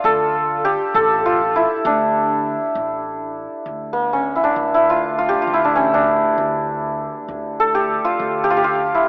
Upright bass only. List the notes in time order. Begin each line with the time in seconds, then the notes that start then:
0.04 D2
0.94 A1
1.85 D2
2.75 A1
3.66 D2
4.56 D2
5.47 D2
6.38 D2
7.28 D2
8.19 D2